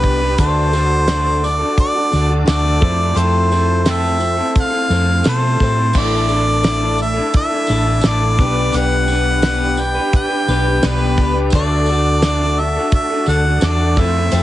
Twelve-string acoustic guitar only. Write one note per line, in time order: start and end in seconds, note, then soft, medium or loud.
0.03 0.38 D4 soft
0.03 0.39 G4 soft
0.03 0.38 B4 medium
0.38 0.73 D3 medium
0.38 0.73 A3 medium
0.38 0.74 D4 medium
0.38 0.72 F#4 medium
0.38 0.72 A4 medium
0.73 1.09 D4 soft
0.73 1.08 F#4 soft
0.73 1.08 A4 medium
1.09 2.45 A3 medium
1.09 2.14 D4 medium
1.09 2.12 F#4 medium
1.09 2.11 A4 medium
2.12 2.46 D4 soft
2.12 2.47 F#4 soft
2.12 2.47 A4 medium
2.46 2.81 A3 medium
2.46 2.82 D4 medium
2.46 2.83 F#4 medium
2.46 2.80 A4 medium
2.81 3.15 C4 soft
2.81 3.16 E4 soft
2.81 3.15 A4 medium
3.15 3.51 F3 medium
3.15 3.51 A3 medium
3.15 3.51 C4 medium
3.15 3.52 E4 medium
3.15 3.51 A4 medium
3.52 3.85 C4 soft
3.52 3.87 E4 medium
3.52 3.87 A4 soft
3.86 4.91 A3 medium
3.86 4.91 C4 medium
3.86 4.89 A4 medium
4.91 5.27 C4 soft
4.91 5.26 A4 medium
5.24 5.60 A3 medium
5.24 5.60 E4 medium
5.24 5.59 A4 medium
5.60 5.96 C4 soft
5.60 5.95 E4 soft
5.60 5.95 A4 medium
5.94 6.29 A2 medium
5.94 6.30 E3 medium
5.94 6.30 A3 medium
5.94 6.30 D4 medium
5.94 6.29 E4 medium
5.94 6.28 A4 medium
6.29 6.65 A3 soft
6.29 6.65 D4 soft
6.29 6.65 E4 soft
6.29 6.64 A4 medium
6.67 7.70 A3 medium
6.67 7.72 D4 medium
6.67 7.70 E4 medium
6.67 7.69 A4 medium
7.71 8.05 A3 soft
7.71 8.06 D4 soft
7.71 8.05 E4 medium
7.71 8.05 A4 medium
8.06 8.40 A3 medium
8.06 8.40 D4 medium
8.06 8.41 E4 medium
8.06 8.40 A4 medium
8.41 8.75 D4 soft
8.41 8.75 G4 medium
8.41 8.75 B4 medium
8.75 9.09 B3 medium
8.75 9.10 D4 medium
8.75 9.09 G4 medium
8.75 9.08 B4 medium
9.09 9.44 D4 soft
9.09 9.45 G4 soft
9.09 9.44 B4 medium
9.44 10.49 B3 medium
9.44 10.49 D4 medium
9.44 10.50 G4 medium
9.44 10.48 B4 medium
10.49 10.83 D4 soft
10.49 10.84 G4 medium
10.49 10.83 B4 medium
10.84 11.18 B3 medium
10.84 11.19 D4 medium
10.84 11.19 G4 medium
10.84 11.20 B4 medium
11.21 11.54 D4 soft
11.21 11.55 G4 soft
11.21 11.54 B4 soft
11.54 11.88 D3 medium
11.54 11.89 A3 medium
11.54 11.89 D4 medium
11.54 11.89 F#4 medium
11.54 11.88 A4 medium
11.90 12.24 D4 soft
11.90 12.24 F#4 medium
11.90 12.24 A4 medium
12.25 13.28 A3 medium
12.25 13.29 D4 medium
12.25 13.28 F#4 medium
12.25 13.26 A4 medium
13.27 13.62 D4 soft
13.27 13.63 F#4 soft
13.27 13.62 A4 medium
13.62 13.97 A3 medium
13.62 13.98 D4 medium
13.62 13.98 F#4 medium
13.62 13.97 A4 medium
13.98 14.31 C4 soft
13.98 14.32 E4 soft
13.98 14.33 A4 medium
14.31 14.43 F3 medium
14.31 14.43 C4 medium
14.31 14.43 E4 medium
14.31 14.43 A4 medium